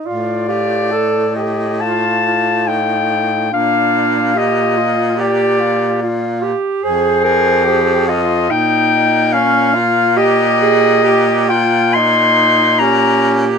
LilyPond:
<<
  \new Staff \with { instrumentName = "Clarinet" } { \time 4/4 \key bes \major \tempo 4 = 71 d''4. ees''8 a''4 g''4 | f''4 ees''4 d''4. r8 | \key ees \mixolydian c''4. ees''8 g''4 f''4 | ees''4. g''8 c'''4 bes''8 r8 | }
  \new Staff \with { instrumentName = "Alto saxophone" } { \time 4/4 \key bes \major f'8 g'8 a'8 r8 f'8 f'8 ees'4 | d'4 g'8 f'8 g'4 f'8 g'8 | \key ees \mixolydian aes'8 bes'8 aes'8 f'8 ees'8 r8 des'8 f'8 | g'8 aes'8 g'8 f'8 ees'4 g'4 | }
  \new Staff \with { instrumentName = "Tenor saxophone" } { \time 4/4 \key bes \major f'8 f'8 a'8 g'8 f'2 | f'2 g'8 f'8 f'8 r8 | \key ees \mixolydian aes'8 aes'8 g'8 f'8 ees'4 des'8 f'8 | g'4 g'8 f'8 ees'4 des'4 | }
  \new Staff \with { instrumentName = "Baritone saxophone" } { \clef bass \time 4/4 \key bes \major a,1 | bes,2.~ bes,8 r8 | \key ees \mixolydian f,2 bes,2~ | bes,1 | }
>>